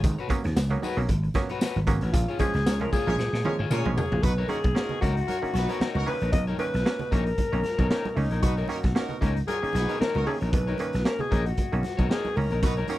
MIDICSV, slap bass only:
0, 0, Header, 1, 3, 480
1, 0, Start_track
1, 0, Tempo, 524476
1, 37, Time_signature, 4, 2, 24, 8
1, 11884, End_track
2, 0, Start_track
2, 0, Title_t, "Slap bass"
2, 0, Program_c, 0, 36
2, 36, Note_on_c, 0, 32, 106
2, 134, Note_off_c, 0, 32, 0
2, 410, Note_on_c, 0, 39, 86
2, 487, Note_off_c, 0, 39, 0
2, 514, Note_on_c, 0, 37, 100
2, 689, Note_off_c, 0, 37, 0
2, 887, Note_on_c, 0, 35, 90
2, 966, Note_off_c, 0, 35, 0
2, 997, Note_on_c, 0, 32, 98
2, 1171, Note_off_c, 0, 32, 0
2, 1610, Note_on_c, 0, 32, 99
2, 1687, Note_off_c, 0, 32, 0
2, 1716, Note_on_c, 0, 32, 88
2, 1814, Note_off_c, 0, 32, 0
2, 1853, Note_on_c, 0, 33, 97
2, 1929, Note_off_c, 0, 33, 0
2, 1955, Note_on_c, 0, 34, 108
2, 2053, Note_off_c, 0, 34, 0
2, 2329, Note_on_c, 0, 37, 86
2, 2407, Note_off_c, 0, 37, 0
2, 2437, Note_on_c, 0, 37, 85
2, 2611, Note_off_c, 0, 37, 0
2, 2810, Note_on_c, 0, 34, 83
2, 2887, Note_off_c, 0, 34, 0
2, 2913, Note_on_c, 0, 46, 101
2, 3012, Note_off_c, 0, 46, 0
2, 3047, Note_on_c, 0, 46, 97
2, 3125, Note_off_c, 0, 46, 0
2, 3290, Note_on_c, 0, 44, 80
2, 3367, Note_off_c, 0, 44, 0
2, 3391, Note_on_c, 0, 46, 104
2, 3491, Note_off_c, 0, 46, 0
2, 3529, Note_on_c, 0, 34, 106
2, 3606, Note_off_c, 0, 34, 0
2, 3771, Note_on_c, 0, 34, 100
2, 3847, Note_off_c, 0, 34, 0
2, 3878, Note_on_c, 0, 35, 102
2, 4052, Note_off_c, 0, 35, 0
2, 4251, Note_on_c, 0, 35, 88
2, 4327, Note_off_c, 0, 35, 0
2, 4597, Note_on_c, 0, 37, 91
2, 4771, Note_off_c, 0, 37, 0
2, 5076, Note_on_c, 0, 35, 88
2, 5174, Note_off_c, 0, 35, 0
2, 5445, Note_on_c, 0, 37, 91
2, 5524, Note_off_c, 0, 37, 0
2, 5688, Note_on_c, 0, 34, 83
2, 5766, Note_off_c, 0, 34, 0
2, 5792, Note_on_c, 0, 35, 92
2, 5968, Note_off_c, 0, 35, 0
2, 6171, Note_on_c, 0, 35, 87
2, 6248, Note_off_c, 0, 35, 0
2, 6517, Note_on_c, 0, 34, 90
2, 6691, Note_off_c, 0, 34, 0
2, 6889, Note_on_c, 0, 35, 79
2, 6966, Note_off_c, 0, 35, 0
2, 7129, Note_on_c, 0, 35, 77
2, 7206, Note_off_c, 0, 35, 0
2, 7473, Note_on_c, 0, 37, 88
2, 7572, Note_off_c, 0, 37, 0
2, 7610, Note_on_c, 0, 34, 91
2, 7687, Note_off_c, 0, 34, 0
2, 7717, Note_on_c, 0, 35, 99
2, 7891, Note_off_c, 0, 35, 0
2, 8091, Note_on_c, 0, 35, 88
2, 8167, Note_off_c, 0, 35, 0
2, 8438, Note_on_c, 0, 37, 86
2, 8612, Note_off_c, 0, 37, 0
2, 8919, Note_on_c, 0, 35, 94
2, 9016, Note_off_c, 0, 35, 0
2, 9292, Note_on_c, 0, 37, 96
2, 9369, Note_off_c, 0, 37, 0
2, 9534, Note_on_c, 0, 34, 88
2, 9610, Note_off_c, 0, 34, 0
2, 9638, Note_on_c, 0, 35, 97
2, 9812, Note_off_c, 0, 35, 0
2, 10016, Note_on_c, 0, 35, 83
2, 10091, Note_off_c, 0, 35, 0
2, 10358, Note_on_c, 0, 34, 101
2, 10532, Note_off_c, 0, 34, 0
2, 10734, Note_on_c, 0, 35, 84
2, 10811, Note_off_c, 0, 35, 0
2, 10973, Note_on_c, 0, 35, 86
2, 11049, Note_off_c, 0, 35, 0
2, 11319, Note_on_c, 0, 37, 92
2, 11417, Note_off_c, 0, 37, 0
2, 11457, Note_on_c, 0, 34, 81
2, 11533, Note_off_c, 0, 34, 0
2, 11559, Note_on_c, 0, 35, 101
2, 11734, Note_off_c, 0, 35, 0
2, 11884, End_track
3, 0, Start_track
3, 0, Title_t, "Muted slap bass strokes"
3, 4970, Note_on_c, 9, 29, 43
3, 5062, Note_off_c, 9, 29, 0
3, 5310, Note_on_c, 9, 29, 46
3, 5402, Note_off_c, 9, 29, 0
3, 8817, Note_on_c, 9, 29, 47
3, 8908, Note_off_c, 9, 29, 0
3, 9159, Note_on_c, 9, 29, 44
3, 9250, Note_off_c, 9, 29, 0
3, 11884, End_track
0, 0, End_of_file